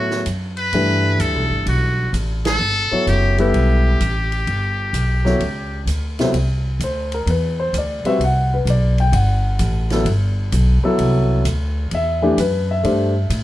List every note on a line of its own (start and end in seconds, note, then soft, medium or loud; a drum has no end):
0.00 0.24 A2 medium
0.00 0.23 F#3 medium
0.00 0.23 B3 medium
0.00 0.23 E4 medium
0.00 0.23 F#4 medium
0.00 0.23 A4 medium
0.00 0.24 C#5 medium
0.10 snare soft
0.26 0.72 F#2 medium
0.26 hi-hat pedal medium
0.26 ride medium
0.57 1.22 B4 medium
0.57 ride soft
0.73 1.18 G2 medium
0.73 2.05 E3 medium
0.73 2.05 G3 soft
0.73 2.05 A3 medium
0.73 2.05 D4 soft
0.73 2.05 B4 medium
0.73 ride medium
1.19 1.35 D2 medium
1.19 1.67 A4 medium
1.19 hi-hat pedal soft
1.19 ride medium
1.35 1.50 B1 medium
1.50 1.65 G1 medium
1.66 2.12 B1 medium
1.66 2.11 F#4 medium
1.66 ride medium
2.13 2.59 A1 medium
2.13 hi-hat pedal medium
2.13 ride medium
2.45 3.04 A4 loud
2.45 snare medium
2.45 ride medium
2.59 2.89 G1 medium
2.91 3.35 F#3 medium
2.91 3.36 B3 medium
2.91 3.36 E4 medium
2.91 3.36 A4 medium
2.91 3.36 C#5 medium
2.91 muted upright bass stroke soft
3.07 3.52 F#1 medium
3.07 3.37 G4 medium
3.07 hi-hat pedal soft
3.07 ride medium
3.38 3.98 G3 medium
3.38 3.98 B3 medium
3.38 3.98 E4 medium
3.38 5.84 G4 medium
3.38 3.98 A4 medium
3.38 3.98 B4 medium
3.38 ride soft
3.54 3.99 B1 medium
3.54 ride soft
4.00 4.46 A1 medium
4.00 hi-hat pedal medium
4.00 ride medium
4.32 ride soft
4.47 4.93 G1 medium
4.47 ride soft
4.93 5.39 B1 medium
4.93 hi-hat pedal medium
4.93 ride medium
5.25 5.39 F#3 medium
5.25 5.39 B3 medium
5.25 5.40 E4 medium
5.25 5.40 A4 medium
5.25 5.40 C#5 medium
5.25 snare soft
5.40 5.85 C#2 medium
5.40 ride soft
5.86 6.32 D2 medium
5.86 hi-hat pedal soft
5.86 ride medium
6.19 6.33 C3 medium
6.19 6.33 F#3 medium
6.19 6.33 B3 medium
6.19 6.33 E4 medium
6.19 6.33 A4 medium
6.19 6.34 C5 medium
6.19 snare soft
6.19 ride soft
6.33 6.79 C2 medium
6.33 ride medium
6.80 7.25 D2 medium
6.80 hi-hat pedal soft
6.80 ride medium
6.84 7.13 C5 medium
7.12 7.28 A#4 medium
7.12 ride soft
7.26 7.72 E2 medium
7.26 7.59 B4 medium
7.26 ride medium
7.60 7.74 C5 medium
7.73 8.02 D2 medium
7.73 hi-hat pedal soft
7.73 ride medium
7.78 8.06 D5 medium
8.04 8.19 G3 medium
8.04 8.19 C4 medium
8.04 8.19 F#4 medium
8.04 8.19 B4 medium
8.04 8.21 E5 medium
8.04 muted upright bass stroke soft
8.04 ride soft
8.19 8.65 C2 medium
8.19 ride medium
8.24 8.52 F#5 medium
8.54 8.68 B4 medium
8.65 9.11 B1 medium
8.65 hi-hat pedal soft
8.65 ride medium
8.70 8.99 D5 medium
8.98 9.14 G5 medium
8.98 ride soft
9.12 9.58 G1 medium
9.12 9.87 F#5 medium
9.12 ride medium
9.59 10.05 A1 medium
9.59 hi-hat pedal medium
9.59 ride medium
9.90 10.05 F#3 medium
9.90 10.05 B3 medium
9.90 10.06 E4 medium
9.90 10.06 A4 medium
9.90 snare soft
9.90 ride soft
10.05 10.51 G1 medium
10.05 ride medium
10.52 10.81 B1 medium
10.52 hi-hat pedal soft
10.52 ride medium
10.83 11.42 F#3 medium
10.83 11.43 B3 medium
10.83 11.43 E4 medium
10.83 11.43 A4 medium
10.83 muted upright bass stroke soft
10.98 11.44 C2 medium
10.98 ride medium
11.45 11.90 D2 medium
11.45 hi-hat pedal medium
11.45 ride medium
11.91 12.37 E2 medium
11.91 12.23 E5 medium
11.91 ride medium
12.22 12.36 E3 medium
12.22 12.37 A3 medium
12.22 12.37 D4 medium
12.22 12.37 G4 medium
12.38 12.83 F#2 medium
12.38 12.69 B4 medium
12.38 hi-hat pedal medium
12.38 ride medium
12.71 13.28 E5 medium
12.83 13.29 G2 medium
12.83 13.12 A3 medium
12.83 13.13 D4 medium
12.83 13.13 G4 medium
12.83 13.13 C5 medium
12.83 ride medium
13.30 13.44 A2 medium
13.30 hi-hat pedal soft
13.30 ride medium